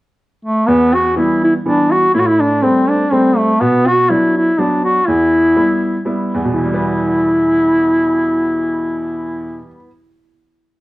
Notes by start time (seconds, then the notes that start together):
0.45 A3
0.67 E2 B3
0.94 F#4
1.16 E3 G3 B3 E4
1.44 E4
1.65 E3 G3 B3 D4
1.91 F#4
2.14 A2 E4
2.20 F#4
2.27 E4
2.40 D4
2.62 G3 A3 C4
2.89 D4
3.11 G3 A3 C4
3.38 A3
3.60 B2 B3
3.87 F#4
4.10 F#3 B3 D4 E4
4.37 E4
4.58 F#3 B3 D4
4.85 F#4
5.08 E2 E4
5.56 G3 B3 E4
6.05 G3 B3 E4
6.34 E2
6.45 B2
6.54 E3 E4
6.64 G3
6.74 B3